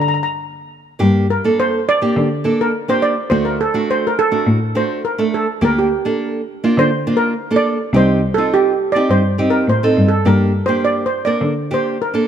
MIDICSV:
0, 0, Header, 1, 4, 480
1, 0, Start_track
1, 0, Key_signature, -2, "minor"
1, 0, Tempo, 578035
1, 835, Time_signature, 4, 2, 24, 8
1, 10194, End_track
2, 0, Start_track
2, 0, Title_t, "Steel pan"
2, 0, Program_c, 0, 114
2, 12, Note_on_c, 0, 82, 63
2, 59, Note_off_c, 0, 82, 0
2, 69, Note_on_c, 0, 82, 66
2, 107, Note_off_c, 0, 82, 0
2, 117, Note_on_c, 0, 82, 53
2, 176, Note_off_c, 0, 82, 0
2, 192, Note_on_c, 0, 82, 69
2, 246, Note_off_c, 0, 82, 0
2, 1083, Note_on_c, 0, 70, 83
2, 1325, Note_on_c, 0, 72, 94
2, 1326, Note_off_c, 0, 70, 0
2, 1567, Note_off_c, 0, 72, 0
2, 1567, Note_on_c, 0, 74, 98
2, 2168, Note_on_c, 0, 70, 84
2, 2184, Note_off_c, 0, 74, 0
2, 2406, Note_on_c, 0, 72, 94
2, 2411, Note_off_c, 0, 70, 0
2, 2511, Note_on_c, 0, 74, 90
2, 2519, Note_off_c, 0, 72, 0
2, 2735, Note_off_c, 0, 74, 0
2, 2739, Note_on_c, 0, 72, 87
2, 2866, Note_on_c, 0, 70, 74
2, 2876, Note_off_c, 0, 72, 0
2, 2977, Note_off_c, 0, 70, 0
2, 2995, Note_on_c, 0, 69, 87
2, 3241, Note_off_c, 0, 69, 0
2, 3243, Note_on_c, 0, 72, 90
2, 3368, Note_off_c, 0, 72, 0
2, 3379, Note_on_c, 0, 70, 79
2, 3475, Note_off_c, 0, 70, 0
2, 3478, Note_on_c, 0, 69, 91
2, 3958, Note_on_c, 0, 72, 82
2, 3969, Note_off_c, 0, 69, 0
2, 4191, Note_on_c, 0, 70, 74
2, 4202, Note_off_c, 0, 72, 0
2, 4414, Note_off_c, 0, 70, 0
2, 4437, Note_on_c, 0, 69, 78
2, 4681, Note_off_c, 0, 69, 0
2, 4690, Note_on_c, 0, 70, 90
2, 4799, Note_off_c, 0, 70, 0
2, 4805, Note_on_c, 0, 67, 66
2, 5248, Note_off_c, 0, 67, 0
2, 5637, Note_on_c, 0, 72, 101
2, 5932, Note_off_c, 0, 72, 0
2, 5952, Note_on_c, 0, 70, 93
2, 6249, Note_off_c, 0, 70, 0
2, 6279, Note_on_c, 0, 74, 102
2, 6605, Note_off_c, 0, 74, 0
2, 6613, Note_on_c, 0, 72, 89
2, 6901, Note_off_c, 0, 72, 0
2, 6928, Note_on_c, 0, 69, 94
2, 7070, Note_off_c, 0, 69, 0
2, 7089, Note_on_c, 0, 67, 92
2, 7409, Note_on_c, 0, 74, 92
2, 7410, Note_off_c, 0, 67, 0
2, 7562, Note_on_c, 0, 72, 86
2, 7566, Note_off_c, 0, 74, 0
2, 7887, Note_off_c, 0, 72, 0
2, 7891, Note_on_c, 0, 70, 79
2, 8047, Note_off_c, 0, 70, 0
2, 8050, Note_on_c, 0, 72, 79
2, 8341, Note_off_c, 0, 72, 0
2, 8374, Note_on_c, 0, 69, 81
2, 8528, Note_on_c, 0, 70, 78
2, 8529, Note_off_c, 0, 69, 0
2, 8852, Note_off_c, 0, 70, 0
2, 8852, Note_on_c, 0, 72, 88
2, 8920, Note_off_c, 0, 72, 0
2, 9007, Note_on_c, 0, 74, 92
2, 9166, Note_off_c, 0, 74, 0
2, 9184, Note_on_c, 0, 72, 79
2, 9335, Note_off_c, 0, 72, 0
2, 9342, Note_on_c, 0, 74, 81
2, 9554, Note_off_c, 0, 74, 0
2, 9749, Note_on_c, 0, 72, 82
2, 9958, Note_off_c, 0, 72, 0
2, 9979, Note_on_c, 0, 70, 72
2, 10082, Note_off_c, 0, 70, 0
2, 10194, End_track
3, 0, Start_track
3, 0, Title_t, "Nylon-string guitar"
3, 0, Program_c, 1, 24
3, 823, Note_on_c, 1, 58, 66
3, 824, Note_on_c, 1, 62, 72
3, 829, Note_on_c, 1, 67, 84
3, 1046, Note_off_c, 1, 58, 0
3, 1046, Note_off_c, 1, 62, 0
3, 1049, Note_off_c, 1, 67, 0
3, 1199, Note_on_c, 1, 58, 64
3, 1203, Note_on_c, 1, 62, 55
3, 1207, Note_on_c, 1, 69, 68
3, 1485, Note_off_c, 1, 58, 0
3, 1487, Note_off_c, 1, 62, 0
3, 1488, Note_off_c, 1, 69, 0
3, 1674, Note_on_c, 1, 58, 64
3, 1680, Note_on_c, 1, 62, 55
3, 1680, Note_on_c, 1, 67, 70
3, 1892, Note_off_c, 1, 58, 0
3, 1893, Note_off_c, 1, 62, 0
3, 1894, Note_off_c, 1, 67, 0
3, 2027, Note_on_c, 1, 58, 63
3, 2033, Note_on_c, 1, 62, 54
3, 2033, Note_on_c, 1, 69, 65
3, 2248, Note_off_c, 1, 58, 0
3, 2249, Note_off_c, 1, 62, 0
3, 2250, Note_off_c, 1, 69, 0
3, 2394, Note_on_c, 1, 58, 60
3, 2399, Note_on_c, 1, 62, 59
3, 2399, Note_on_c, 1, 67, 71
3, 2612, Note_off_c, 1, 58, 0
3, 2612, Note_off_c, 1, 62, 0
3, 2614, Note_off_c, 1, 67, 0
3, 2750, Note_on_c, 1, 57, 69
3, 2753, Note_on_c, 1, 66, 76
3, 2754, Note_on_c, 1, 62, 61
3, 2968, Note_off_c, 1, 57, 0
3, 2970, Note_off_c, 1, 62, 0
3, 2970, Note_off_c, 1, 66, 0
3, 3106, Note_on_c, 1, 57, 65
3, 3106, Note_on_c, 1, 62, 60
3, 3112, Note_on_c, 1, 66, 72
3, 3397, Note_off_c, 1, 62, 0
3, 3398, Note_off_c, 1, 57, 0
3, 3400, Note_off_c, 1, 66, 0
3, 3582, Note_on_c, 1, 57, 63
3, 3586, Note_on_c, 1, 62, 58
3, 3586, Note_on_c, 1, 66, 67
3, 3805, Note_off_c, 1, 57, 0
3, 3806, Note_off_c, 1, 62, 0
3, 3806, Note_off_c, 1, 66, 0
3, 3944, Note_on_c, 1, 57, 63
3, 3946, Note_on_c, 1, 62, 59
3, 3947, Note_on_c, 1, 66, 73
3, 4165, Note_off_c, 1, 57, 0
3, 4165, Note_off_c, 1, 62, 0
3, 4166, Note_off_c, 1, 66, 0
3, 4305, Note_on_c, 1, 57, 70
3, 4308, Note_on_c, 1, 62, 61
3, 4312, Note_on_c, 1, 69, 68
3, 4526, Note_off_c, 1, 57, 0
3, 4528, Note_off_c, 1, 62, 0
3, 4529, Note_off_c, 1, 69, 0
3, 4660, Note_on_c, 1, 58, 66
3, 4664, Note_on_c, 1, 62, 57
3, 4667, Note_on_c, 1, 67, 67
3, 4883, Note_off_c, 1, 58, 0
3, 4885, Note_off_c, 1, 62, 0
3, 4885, Note_off_c, 1, 67, 0
3, 5024, Note_on_c, 1, 58, 68
3, 5029, Note_on_c, 1, 62, 63
3, 5030, Note_on_c, 1, 69, 66
3, 5316, Note_off_c, 1, 58, 0
3, 5319, Note_off_c, 1, 62, 0
3, 5319, Note_off_c, 1, 69, 0
3, 5511, Note_on_c, 1, 58, 69
3, 5511, Note_on_c, 1, 62, 60
3, 5515, Note_on_c, 1, 65, 65
3, 5728, Note_off_c, 1, 62, 0
3, 5729, Note_off_c, 1, 65, 0
3, 5730, Note_off_c, 1, 58, 0
3, 5869, Note_on_c, 1, 58, 62
3, 5870, Note_on_c, 1, 62, 59
3, 5871, Note_on_c, 1, 65, 72
3, 6087, Note_off_c, 1, 65, 0
3, 6088, Note_off_c, 1, 58, 0
3, 6088, Note_off_c, 1, 62, 0
3, 6232, Note_on_c, 1, 58, 62
3, 6236, Note_on_c, 1, 62, 68
3, 6240, Note_on_c, 1, 69, 75
3, 6450, Note_off_c, 1, 58, 0
3, 6452, Note_off_c, 1, 62, 0
3, 6453, Note_off_c, 1, 69, 0
3, 6593, Note_on_c, 1, 60, 59
3, 6596, Note_on_c, 1, 63, 53
3, 6597, Note_on_c, 1, 67, 75
3, 6810, Note_off_c, 1, 60, 0
3, 6811, Note_off_c, 1, 63, 0
3, 6812, Note_off_c, 1, 67, 0
3, 6951, Note_on_c, 1, 60, 55
3, 6958, Note_on_c, 1, 63, 55
3, 6961, Note_on_c, 1, 65, 65
3, 7242, Note_off_c, 1, 60, 0
3, 7243, Note_off_c, 1, 63, 0
3, 7243, Note_off_c, 1, 65, 0
3, 7433, Note_on_c, 1, 60, 62
3, 7439, Note_on_c, 1, 63, 58
3, 7443, Note_on_c, 1, 67, 75
3, 7651, Note_off_c, 1, 60, 0
3, 7655, Note_off_c, 1, 63, 0
3, 7655, Note_off_c, 1, 67, 0
3, 7791, Note_on_c, 1, 60, 64
3, 7796, Note_on_c, 1, 67, 66
3, 7797, Note_on_c, 1, 63, 60
3, 8010, Note_off_c, 1, 60, 0
3, 8012, Note_off_c, 1, 63, 0
3, 8013, Note_off_c, 1, 67, 0
3, 8163, Note_on_c, 1, 60, 67
3, 8168, Note_on_c, 1, 63, 62
3, 8170, Note_on_c, 1, 69, 78
3, 8378, Note_off_c, 1, 60, 0
3, 8379, Note_off_c, 1, 69, 0
3, 8380, Note_off_c, 1, 63, 0
3, 8512, Note_on_c, 1, 58, 65
3, 8516, Note_on_c, 1, 62, 56
3, 8519, Note_on_c, 1, 67, 69
3, 8731, Note_off_c, 1, 58, 0
3, 8733, Note_off_c, 1, 62, 0
3, 8735, Note_off_c, 1, 67, 0
3, 8867, Note_on_c, 1, 58, 61
3, 8872, Note_on_c, 1, 62, 54
3, 8874, Note_on_c, 1, 67, 68
3, 9161, Note_off_c, 1, 58, 0
3, 9164, Note_off_c, 1, 62, 0
3, 9164, Note_off_c, 1, 67, 0
3, 9351, Note_on_c, 1, 58, 61
3, 9356, Note_on_c, 1, 62, 60
3, 9359, Note_on_c, 1, 70, 71
3, 9573, Note_off_c, 1, 58, 0
3, 9575, Note_off_c, 1, 62, 0
3, 9576, Note_off_c, 1, 70, 0
3, 9721, Note_on_c, 1, 58, 59
3, 9723, Note_on_c, 1, 62, 55
3, 9724, Note_on_c, 1, 67, 69
3, 9937, Note_off_c, 1, 62, 0
3, 9938, Note_off_c, 1, 58, 0
3, 9939, Note_off_c, 1, 67, 0
3, 10077, Note_on_c, 1, 58, 64
3, 10080, Note_on_c, 1, 62, 58
3, 10087, Note_on_c, 1, 69, 70
3, 10194, Note_off_c, 1, 58, 0
3, 10194, Note_off_c, 1, 62, 0
3, 10194, Note_off_c, 1, 69, 0
3, 10194, End_track
4, 0, Start_track
4, 0, Title_t, "Cello"
4, 0, Program_c, 2, 42
4, 840, Note_on_c, 2, 43, 83
4, 1039, Note_off_c, 2, 43, 0
4, 1800, Note_on_c, 2, 50, 82
4, 1998, Note_off_c, 2, 50, 0
4, 2752, Note_on_c, 2, 38, 84
4, 2953, Note_off_c, 2, 38, 0
4, 3710, Note_on_c, 2, 45, 80
4, 3911, Note_off_c, 2, 45, 0
4, 4666, Note_on_c, 2, 38, 79
4, 4869, Note_off_c, 2, 38, 0
4, 5625, Note_on_c, 2, 50, 83
4, 5828, Note_off_c, 2, 50, 0
4, 6589, Note_on_c, 2, 36, 88
4, 6791, Note_off_c, 2, 36, 0
4, 7551, Note_on_c, 2, 43, 76
4, 7753, Note_off_c, 2, 43, 0
4, 8033, Note_on_c, 2, 45, 71
4, 8250, Note_off_c, 2, 45, 0
4, 8276, Note_on_c, 2, 43, 79
4, 8492, Note_off_c, 2, 43, 0
4, 8517, Note_on_c, 2, 43, 92
4, 8718, Note_off_c, 2, 43, 0
4, 9474, Note_on_c, 2, 50, 84
4, 9677, Note_off_c, 2, 50, 0
4, 10194, End_track
0, 0, End_of_file